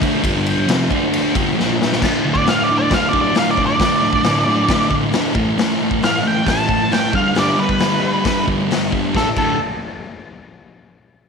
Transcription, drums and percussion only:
0.02 kick loud
0.02 ride medium
0.24 kick loud
0.24 ride medium
0.46 ride medium
0.69 snare loud
0.69 ride medium
0.91 kick medium
0.91 ride medium
1.13 ride medium
1.35 kick loud
1.35 ride medium
1.60 snare medium
1.82 snare medium
1.92 snare medium
2.02 kick loud
2.02 snare loud
2.02 crash loud
2.35 kick medium
2.46 snare loud
2.46 open hi-hat soft
2.91 kick loud
2.91 snare loud
2.91 open hi-hat medium
3.13 kick medium
3.35 snare loud
3.35 open hi-hat soft
3.57 kick medium
3.80 kick loud
3.80 snare loud
3.80 open hi-hat medium
4.13 kick medium
4.23 snare loud
4.23 open hi-hat soft
4.69 kick loud
4.69 snare loud
4.69 open hi-hat soft
4.91 kick medium
5.12 snare loud
5.12 open hi-hat soft
5.35 kick loud
5.58 snare loud
5.58 open hi-hat medium
5.91 kick medium
6.02 snare loud
6.02 open hi-hat medium
6.47 kick loud
6.47 snare loud
6.47 open hi-hat medium
6.69 kick medium
6.92 snare loud
6.92 open hi-hat medium
7.13 kick loud
7.35 snare loud
7.35 open hi-hat medium
7.69 kick medium
7.79 snare loud
7.79 open hi-hat soft
8.25 kick loud
8.25 snare loud
8.25 open hi-hat soft
8.48 kick medium
8.71 snare loud
8.71 open hi-hat soft
8.92 kick medium
9.15 kick loud
9.15 snare medium
9.36 kick medium
9.36 crash medium

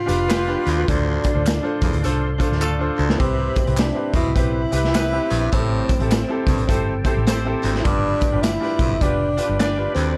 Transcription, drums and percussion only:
0.08 closed hi-hat medium
0.08 tambourine medium
0.30 snare loud
0.30 clap medium
0.30 closed hi-hat loud
0.30 tambourine medium
0.67 closed hi-hat medium
0.67 tambourine soft
0.88 kick loud
0.88 closed hi-hat medium
0.88 tambourine soft
1.24 kick medium
1.24 closed hi-hat medium
1.24 tambourine medium
1.46 snare loud
1.46 clap medium
1.46 closed hi-hat medium
1.46 tambourine medium
1.81 kick medium
1.81 closed hi-hat medium
1.81 tambourine soft
1.93 closed hi-hat medium
2.04 closed hi-hat medium
2.04 tambourine medium
2.40 kick medium
2.40 closed hi-hat medium
2.40 tambourine medium
2.52 snare soft
2.62 clap medium
2.62 tambourine medium
2.99 tambourine soft
3.10 snare medium
3.20 kick loud
3.20 closed hi-hat medium
3.56 kick medium
3.56 closed hi-hat medium
3.56 tambourine medium
3.67 closed hi-hat medium
3.77 snare loud
3.77 clap medium
3.77 closed hi-hat medium
3.77 tambourine medium
4.14 kick medium
4.14 closed hi-hat medium
4.14 tambourine soft
4.36 kick medium
4.36 closed hi-hat medium
4.36 tambourine medium
4.72 closed hi-hat medium
4.72 tambourine medium
4.84 snare soft
4.94 snare loud
4.94 clap medium
4.94 closed hi-hat loud
4.94 tambourine medium
5.30 closed hi-hat medium
5.30 tambourine soft
5.53 kick loud
5.53 closed hi-hat medium
5.53 tambourine soft
5.89 kick medium
5.89 closed hi-hat medium
5.89 tambourine medium
6.00 closed hi-hat medium
6.11 snare loud
6.11 clap medium
6.11 closed hi-hat medium
6.11 tambourine medium
6.47 kick medium
6.47 closed hi-hat medium
6.47 tambourine soft
6.58 closed hi-hat soft
6.69 kick medium
6.69 closed hi-hat medium
6.69 tambourine medium
7.05 kick medium
7.05 closed hi-hat medium
7.05 tambourine medium
7.27 snare loud
7.27 clap medium
7.27 closed hi-hat medium
7.27 tambourine medium
7.63 closed hi-hat medium
7.63 tambourine soft
7.75 snare soft
7.85 kick loud
7.85 closed hi-hat medium
7.85 tambourine soft
8.21 kick medium
8.21 closed hi-hat medium
8.21 tambourine medium
8.43 snare loud
8.43 clap medium
8.43 closed hi-hat medium
8.43 tambourine medium
8.62 snare soft
8.79 kick medium
8.79 closed hi-hat medium
8.79 tambourine soft
9.01 kick medium
9.01 closed hi-hat medium
9.01 tambourine medium
9.38 closed hi-hat medium
9.38 tambourine medium
9.59 snare loud
9.59 clap medium
9.59 closed hi-hat loud
9.59 tambourine medium
9.96 closed hi-hat medium
9.96 tambourine soft

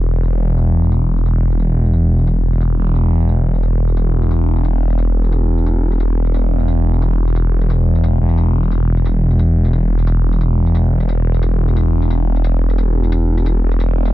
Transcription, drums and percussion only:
0.15 tambourine soft
0.24 tambourine soft
0.49 tambourine soft
0.58 tambourine medium
0.83 tambourine soft
0.92 tambourine medium
1.17 tambourine soft
1.26 tambourine medium
1.51 tambourine soft
1.60 tambourine medium
1.85 tambourine soft
1.93 tambourine medium
2.19 tambourine soft
2.27 tambourine medium
2.53 tambourine soft
2.61 tambourine medium
2.87 tambourine soft
2.95 tambourine medium
3.21 tambourine soft
3.29 tambourine medium
3.54 tambourine soft
3.63 tambourine medium
3.88 tambourine soft
3.97 tambourine medium
4.22 tambourine soft
4.31 tambourine medium
4.56 tambourine soft
4.65 tambourine medium
4.90 tambourine soft
4.99 tambourine medium
5.24 tambourine soft
5.32 tambourine medium
5.58 tambourine soft
5.66 tambourine medium
5.92 tambourine soft
6.00 tambourine medium
6.26 tambourine soft
6.34 tambourine medium
6.60 tambourine soft
6.68 tambourine medium
6.94 tambourine soft
7.02 tambourine medium
7.27 tambourine soft
7.36 tambourine medium
7.61 tambourine soft
7.70 tambourine medium
7.95 tambourine soft
8.04 tambourine medium
8.29 tambourine soft
8.38 tambourine medium
8.63 tambourine soft
8.71 tambourine medium
8.97 tambourine soft
9.05 tambourine medium
9.31 tambourine soft
9.39 tambourine medium
9.65 tambourine soft
9.73 tambourine medium
9.99 tambourine soft
10.07 tambourine medium
10.32 tambourine soft
10.41 tambourine medium
10.66 tambourine soft
10.75 tambourine medium
11.00 tambourine soft
11.09 tambourine medium
11.34 tambourine soft
11.43 tambourine medium
11.68 tambourine soft
11.77 tambourine medium
12.02 tambourine soft
12.10 tambourine medium
12.36 tambourine soft
12.44 tambourine medium
12.70 tambourine soft
12.78 tambourine medium
13.04 tambourine soft
13.12 tambourine medium
13.38 tambourine soft
13.46 tambourine medium
13.71 tambourine soft
13.80 tambourine medium
14.05 tambourine soft

